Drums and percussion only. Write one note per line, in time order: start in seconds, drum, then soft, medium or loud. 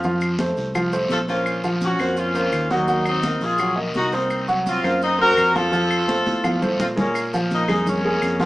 0.03 high conga soft
0.03 long guiro medium
0.03 maracas medium
0.21 high conga soft
0.21 claves medium
0.21 maracas medium
0.39 high conga medium
0.39 short guiro medium
0.39 maracas medium
0.56 high conga soft
0.56 short guiro medium
0.56 maracas soft
0.74 high conga soft
0.74 long guiro medium
0.74 claves medium
0.74 maracas medium
0.92 high conga soft
0.92 maracas medium
1.09 high conga medium
1.09 short guiro medium
1.09 maracas medium
1.28 high conga soft
1.28 short guiro medium
1.28 maracas soft
1.46 high conga soft
1.46 long guiro medium
1.46 claves medium
1.46 maracas medium
1.64 high conga soft
1.64 maracas medium
1.81 high conga medium
1.81 short guiro medium
1.81 maracas medium
1.99 high conga soft
1.99 short guiro medium
1.99 claves medium
1.99 maracas soft
2.17 high conga soft
2.17 long guiro medium
2.17 maracas medium
2.35 high conga soft
2.35 maracas medium
2.52 high conga soft
2.52 short guiro medium
2.52 claves medium
2.52 maracas medium
2.70 high conga medium
2.70 short guiro medium
2.70 maracas soft
2.88 high conga soft
2.88 long guiro medium
2.88 maracas medium
3.05 high conga soft
3.05 claves medium
3.05 maracas medium
3.23 high conga medium
3.23 short guiro medium
3.23 maracas medium
3.41 high conga soft
3.41 short guiro medium
3.41 maracas soft
3.58 high conga soft
3.58 long guiro medium
3.58 claves medium
3.58 maracas medium
3.78 high conga soft
3.94 high conga medium
3.94 short guiro medium
3.94 maracas medium
4.12 high conga soft
4.12 short guiro medium
4.12 maracas soft
4.30 high conga soft
4.30 long guiro medium
4.30 claves medium
4.30 maracas medium
4.48 high conga soft
4.48 maracas medium
4.66 high conga medium
4.66 short guiro medium
4.66 maracas medium
4.84 high conga soft
4.84 short guiro medium
4.84 claves medium
4.84 maracas soft
5.02 high conga soft
5.02 long guiro medium
5.02 maracas medium
5.20 high conga soft
5.37 high conga soft
5.37 short guiro medium
5.37 claves medium
5.37 maracas medium
5.55 high conga medium
5.55 short guiro medium
5.55 maracas soft
5.73 high conga soft
5.73 long guiro medium
5.73 maracas medium
5.91 high conga soft
5.91 claves medium
5.91 maracas medium
6.08 high conga medium
6.08 short guiro medium
6.08 maracas medium
6.26 high conga medium
6.26 short guiro medium
6.26 maracas soft
6.44 high conga medium
6.44 long guiro medium
6.44 claves medium
6.44 maracas medium
6.62 low conga medium
6.62 maracas medium
6.80 low conga medium
6.80 short guiro medium
6.80 maracas medium
6.97 low conga medium
6.97 short guiro medium
6.97 maracas soft
7.14 high conga soft
7.14 long guiro medium
7.14 claves medium
7.14 maracas medium
7.33 high conga soft
7.33 maracas medium
7.50 high conga medium
7.50 short guiro medium
7.50 maracas medium
7.68 high conga soft
7.68 low conga medium
7.68 short guiro medium
7.68 claves medium
7.68 maracas soft
7.86 high conga soft
7.86 low conga medium
7.86 long guiro medium
7.86 maracas medium
8.05 high conga soft
8.22 high conga soft
8.22 short guiro medium
8.22 claves medium
8.22 maracas medium
8.40 high conga medium
8.40 short guiro medium
8.40 maracas soft